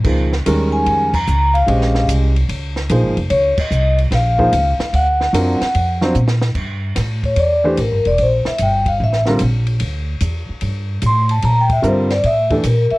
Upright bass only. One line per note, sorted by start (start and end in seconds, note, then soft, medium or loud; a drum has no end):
0.05 0.44 C#2 medium
0.46 0.85 D#2 medium
0.87 1.26 F2 medium
1.28 1.67 C#2 medium
1.68 2.07 A#1 medium
2.08 2.48 C2 medium
2.49 2.88 C#2 medium
2.90 3.03 A#1 medium
3.03 3.16 G#1 medium
3.17 3.29 F1 medium
3.30 3.56 C#2 medium
3.58 muted upright bass stroke soft
3.71 4.10 C2 medium
4.11 4.51 A#1 medium
4.53 4.78 C#2 loud
4.79 muted upright bass stroke soft
4.93 5.32 D2 medium
5.33 5.59 F#2 medium
5.61 muted upright bass stroke soft
5.75 6.14 F2 medium
6.15 6.54 A#2 medium
6.56 6.95 G2 medium
6.97 7.35 A2 medium
7.36 7.76 E2 medium
7.77 7.91 A1 medium
7.91 8.04 G1 medium
8.06 8.18 E1 medium
8.19 8.44 A#1 medium
8.46 muted upright bass stroke soft
8.59 8.98 G1 medium
9.00 9.39 A1 medium
9.41 9.80 A#1 medium
9.80 10.20 D2 medium
10.21 10.46 E2 medium
10.49 muted upright bass stroke soft
10.62 11.01 G2 medium
11.02 11.41 A2 medium
11.43 11.82 A#2 medium
11.83 12.23 G2 medium
12.24 12.63 A2 medium
12.64 12.90 A#2 medium
12.92 muted upright bass stroke soft